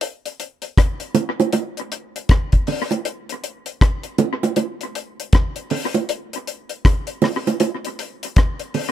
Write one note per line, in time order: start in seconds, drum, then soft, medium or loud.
0.01 closed hi-hat medium
0.26 closed hi-hat medium
0.40 closed hi-hat medium
0.62 closed hi-hat medium
0.78 kick loud
0.78 cross-stick loud
0.78 closed hi-hat loud
1.00 closed hi-hat medium
1.15 closed hi-hat medium
1.15 high bongo medium
1.15 low bongo medium
1.40 closed hi-hat soft
1.40 high bongo medium
1.53 closed hi-hat medium
1.53 high bongo medium
1.77 closed hi-hat soft
1.92 closed hi-hat medium
2.16 closed hi-hat medium
2.29 kick loud
2.29 cross-stick loud
2.29 closed hi-hat medium
2.52 kick medium
2.52 closed hi-hat medium
2.67 open hi-hat medium
2.67 low bongo medium
2.91 closed hi-hat medium
2.91 high bongo medium
3.05 closed hi-hat medium
3.29 closed hi-hat medium
3.44 closed hi-hat medium
3.66 closed hi-hat medium
3.81 kick loud
3.81 cross-stick loud
3.81 closed hi-hat loud
4.03 closed hi-hat medium
4.18 closed hi-hat medium
4.18 high bongo medium
4.18 low bongo medium
4.43 closed hi-hat soft
4.43 high bongo medium
4.56 closed hi-hat medium
4.56 high bongo medium
4.81 closed hi-hat soft
4.95 closed hi-hat medium
5.20 closed hi-hat medium
5.33 kick loud
5.33 cross-stick loud
5.33 closed hi-hat medium
5.56 closed hi-hat medium
5.70 open hi-hat medium
5.70 low bongo medium
5.94 closed hi-hat medium
5.94 high bongo medium
6.09 closed hi-hat medium
6.33 closed hi-hat medium
6.47 closed hi-hat medium
6.69 closed hi-hat medium
6.85 kick loud
6.85 cross-stick loud
6.85 closed hi-hat medium
7.07 closed hi-hat medium
7.22 cross-stick medium
7.22 open hi-hat soft
7.22 high bongo medium
7.22 low bongo medium
7.47 closed hi-hat soft
7.47 high bongo medium
7.60 closed hi-hat medium
7.60 high bongo medium
7.85 closed hi-hat medium
7.99 closed hi-hat medium
8.23 closed hi-hat medium
8.36 kick loud
8.36 cross-stick loud
8.36 closed hi-hat medium
8.59 closed hi-hat soft
8.74 open hi-hat medium
8.74 low bongo medium